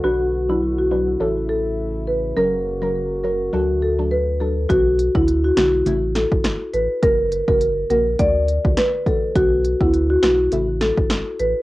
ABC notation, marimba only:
X:1
M:4/4
L:1/16
Q:"Swing 16ths" 1/4=103
K:Bm
V:1 name="Marimba"
F2 z E z F F z3 A z3 B z | ^A z2 A z2 A z F z =A z B z A z | F2 z E z F F z3 A z3 B z | ^A z2 A z2 A z d3 z B z =A z |
F2 z E z F F z3 A z3 B z |]